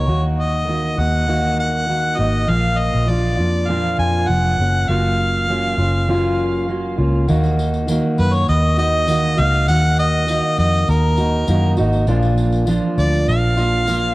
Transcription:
Already playing: C#5
0.07 D#2 D#3 A#3 D#4 F#4
0.40 D#5
0.67 D#3 A#3 D#4 F#4
0.97 D#2 A#3 D#4 F#4 F#5
1.27 D#3 A#3 D#4 F#4
1.60 F#5
1.87 D#3 A#3 D#4 F#4
2.17 G#1 A#3 D#4 F#4 D#5
2.47 A#1 A#2 F3 A#3 F4 F5
2.79 D#5
2.94 A#1
3.07 F3 A#3 D4 F4 D5
3.37 F2 A#3 D4 F4
3.68 A#2 F3 A#3 D4 F4 F5
3.98 F2 G#5
4.28 F1 F3 A#3 D4 F#5
4.59 F#1 A#3 C#4
4.88 F#1 F#3 A#3 C#4 F4 F5
5.49 F#3 A#3 C#4 F4
5.78 F#1 A#3 C#4 F4
6.08 F#3 A#3 C#4 F4
6.68 F#3 A#3 C#4 F4
6.98 C#2 A#3 C#4 F4
7.28 D#2 D#3 A#3 D#4 F#4, tambourine
7.44 tambourine
7.59 tambourine
7.74 tambourine
7.87 D#3 A#3 D#4 F#4, tambourine
8.18 F#2 B4, tambourine
8.33 C#5, tambourine
8.48 D#2 D#5, tambourine
8.77 A#3 D#4 F#4 D#5, tambourine
9.07 D#3 A#3 D#4 F#4, tambourine
9.37 C#2 A#3 D#4 F#4 F5, tambourine
9.53 tambourine
9.67 D#2 D#3 A#3 D#4 F#4 F#5, tambourine
9.83 tambourine
9.98 D#5, tambourine
10.27 D#3 A#3 D#4 F#4, tambourine
10.58 F2 D#5, tambourine
10.73 tambourine
10.88 D#2 A#4, tambourine
11.17 A#3 D#4 F#4, tambourine
11.47 F#2 D#3 A#3 D#4 F#4, tambourine
11.77 G#1 A#3 D#4 F#4, tambourine
11.93 tambourine
12.07 A#1 A#2 F3 A#3 D4 F4, tambourine
12.22 tambourine
12.38 tambourine
12.53 tambourine
12.66 F3 A#3 D4 F4, tambourine
12.98 D2 D5, tambourine
13.13 tambourine
13.28 A#1 F5, tambourine
13.56 A#3 D4 F4, tambourine
13.86 F3 A#3 D4 F4, tambourine

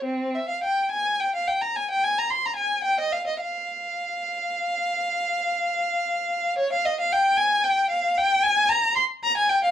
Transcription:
0.04 C4
0.35 E5
0.49 F5
0.64 G5
0.92 G#5
1.20 G5
1.35 F5
1.47 G5
1.61 A#5
1.76 G#5
1.91 G5
2.04 G#5
2.18 A#5
2.30 C6
2.45 A#5
2.56 G#5
2.84 G5
3.00 D#5
3.12 F5
3.27 D#5
3.40 F5
6.58 C#5
6.73 F5
6.85 D#5
7.00 F5
7.12 G5
7.37 G#5
7.63 G5
7.90 F5
8.17 G5
8.43 G#5
8.69 A#5
8.96 C6
9.23 A#5
9.37 G#5
9.49 G5
9.64 F5

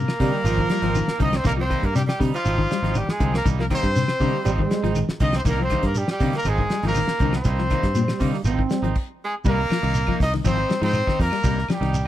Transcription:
Already playing: C3 A#3 A#4
0.08 snare, claves
0.20 C3 D3 G3 A#3 D#4, kick, snare, open hi-hat, shekere
0.44 G#1 F3 C4 D#4, snare, closed hi-hat, claves, shekere
0.58 D#3, kick
0.69 G3, snare, closed hi-hat, shekere
0.82 G#1 F3 C4 D#4, snare, closed hi-hat
0.94 D#3, closed hi-hat, claves, shekere
1.08 muted fingered electric bass stroke, snare
1.19 C2 D3 F3 C4 D#4 D#5, kick, closed hi-hat, shekere
1.32 C4, snare, closed hi-hat, claves
1.37 C5
1.44 C2 D#3 G3 A#3 D#4 A#4, kick, snare, closed hi-hat, shekere
1.57 F3 C4
1.61 C5
1.70 D#3 G3 A#3 D#4, kick, closed hi-hat, claves, shekere
1.83 G2 A#3 A#4, kick, closed hi-hat
1.95 C3 G3 G4, snare, closed hi-hat, shekere
2.07 G3 G4, snare, claves
2.19 C3 D3 G3 D#4, muted clean electric guitar stroke, kick, snare, open hi-hat, shekere
2.34 F3 F4, closed hi-hat
2.45 G#1 F3 C4 D#4, closed hi-hat, claves, shekere
2.58 D#3, kick
2.70 G3, snare, closed hi-hat, shekere
2.82 G#1 F3 C4 D#4, snare, closed hi-hat
2.95 D#3 G3 G4, closed hi-hat, claves, shekere
3.08 G#3 G#4, muted fingered electric bass stroke, snare
3.20 C2 D3 F3 C4 D#4, kick, closed hi-hat, shekere
3.34 A#3 A#4, snare, claves
3.44 C2 D#3 G3 A#3 D#4, kick, closed hi-hat, shekere
3.59 F3 A#3 A#4, snare
3.70 D#3 G3 A#3 C4 D#4, kick, snare, closed hi-hat, claves, shekere
3.75 C5
3.83 G2, kick, closed hi-hat
3.96 C3, snare, closed hi-hat, shekere
4.08 snare, claves
4.20 C3 D3 G3 A#3 D#4, kick, open hi-hat, shekere
4.45 G#1 F3 G3 C4 D#4, closed hi-hat, claves, shekere
4.58 D#3 G#3, kick
4.71 G3, snare, closed hi-hat, shekere
4.83 G#1 F3 C4 D#4, snare, closed hi-hat
4.95 D#3, closed hi-hat, claves, shekere
5.09 muted fingered electric bass stroke, snare
5.20 C2 D3 F3 C4 D#4 D#5, kick, closed hi-hat, shekere
5.32 C4, snare, closed hi-hat, claves
5.38 C5
5.45 C2 D#3 G3 A#3 D#4, kick, closed hi-hat, shekere
5.50 A#4
5.60 F3 C4
5.64 C5
5.69 D#3 G3 A#3 D#4, kick, snare, closed hi-hat, claves, shekere
5.83 G2, kick, snare, closed hi-hat
5.87 A#3 A#4
5.95 G3 G4, closed hi-hat, shekere
6.08 G3, snare, claves
6.12 G4
6.20 C3 D3 G3 A#3 D#4, kick, open hi-hat, shekere
6.33 A#3 A#4, snare, closed hi-hat
6.45 G#1 F3 G#3 C4 D#4, closed hi-hat, claves, shekere
6.49 G#4
6.58 D#3, kick
6.70 G3, snare, closed hi-hat, shekere
6.83 G#1 F3 A#3 C4 D#4, snare, closed hi-hat
6.87 A#4
6.95 D#3, closed hi-hat, claves, shekere
7.08 snare
7.19 C2 D3 F3 C4 D#4, kick, closed hi-hat, shekere
7.33 C4 C5, snare, claves
7.44 C2 G3 A#3 D#4, muted clean electric guitar stroke, kick, closed hi-hat, shekere
7.58 F3, snare
7.70 D#3 G3 A#3 D#4, kick, snare, closed hi-hat, claves, shekere
7.83 G2, kick, snare, closed hi-hat
7.95 A#2 G3, closed hi-hat, shekere
8.08 snare, claves
8.20 C3 D3 G3 A#3 D#4, kick, open hi-hat, shekere
8.34 snare
8.44 G#1 F3 C4 D#4, closed hi-hat, claves, shekere
8.59 D#3, kick
8.70 G3, snare, closed hi-hat, shekere
8.82 G#1 F3 C4 D#4, closed hi-hat
8.95 kick, crash
9.24 G#3 G#4
9.45 C2 G3 A#3 D#4 A#4, kick, ride bell, shekere
9.49 A#3
9.70 F3, muted fingered electric bass stroke, snare, ride bell, claves, shekere
9.83 C2 D#3 A#3 D#4, ride bell
9.94 ride bell, shekere
10.07 F3 A#3 D#4, kick, claves
10.20 C2 D#4 D#5, kick, snare, open hi-hat, shekere
10.33 D#3, snare, ride bell
10.44 G#1 F3 C4 D#4 C5, kick, ride bell, claves, shekere
10.57 C4 D#4
10.69 G3, snare, ride bell, shekere
10.81 G#2 F3 C4 D#4 C5, ride bell
10.93 ride bell, claves, shekere
11.07 D#3 C4 D#4, kick, snare
11.19 F2 A#3 A#4, kick, open hi-hat, shekere
11.31 G3, snare, ride bell, claves
11.43 C2 G3 A#3 D#4, kick, ride bell, shekere
11.58 snare
11.69 F3 G3 G4, muted fingered electric bass stroke, snare, ride bell, claves, shekere
11.81 C2 D#3 D#4, muted clean electric guitar stroke, snare, ride bell
11.94 ride bell, shekere

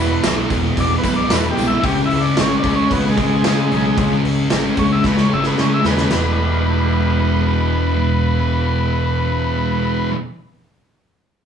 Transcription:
Already playing: E1 E2 E3 B4
0.00 B2
0.23 B1 E2 B2, snare, open hi-hat, tambourine
0.28 E3
0.50 E1 B2 E3, kick, open hi-hat, tambourine
0.54 E2
0.77 E1 E2 B2 E3 D5, kick, open hi-hat, tambourine
0.98 B4
1.03 B1 B2 E3, kick, open hi-hat, tambourine
1.16 D5
1.29 E2 B2 B4, snare, open hi-hat, tambourine
1.34 E3
1.51 G4
1.55 C2 E3, open hi-hat, tambourine
1.59 B2
1.67 E4
1.81 C#2 C#3 G#3 G4, kick, open hi-hat
1.85 C#4
2.06 C#4 E4
2.10 C#2 G#3, open hi-hat
2.20 D4
2.36 G#1 C#3 G#3, snare, open hi-hat
2.40 C#4
2.58 D4
2.62 C#2 G#3 C#4, kick, open hi-hat
2.67 C#3
2.75 C#4
2.90 C#2 C#3 G#3 B3, kick, open hi-hat
2.94 C#4
3.11 G#3
3.17 G#1 G#3 C#4, kick, open hi-hat
3.43 C#3 G#3 C#4, snare, open hi-hat
3.71 B1 C#4, open hi-hat
3.76 G#3
3.97 C#2 C#3 G#3, kick, open hi-hat
4.01 C#4
4.23 C#2 C#4, open hi-hat
4.27 G#3
4.50 G#1 C#3 G#3 C#4, snare, open hi-hat
4.76 C#2 G#3 C#4 C#5, kick, open hi-hat
4.80 C#3
4.92 E5
5.02 C#2 C#3 G#3, kick, snare
5.06 C#4 B4
5.17 snare
5.21 C#5
5.30 G#1 C#4 E5
5.34 G#3
5.43 B4, snare
5.56 C#3 G#3, snare
5.60 C#4 C#5
5.74 E5
5.82 D#2 C#4 B4, snare
5.87 G#3
5.97 snare
6.09 E1 E2 B2 B4, snare, crash
6.14 E3

